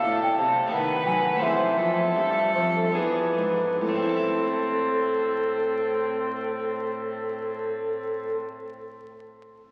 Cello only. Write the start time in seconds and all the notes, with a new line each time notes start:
0.05 A2
0.38 C3
0.71 D#3
1.05 F#3
1.41 E2
1.79 F2
2.16 G2
2.55 F2
2.95 E2
3.37 G#2
3.80 A2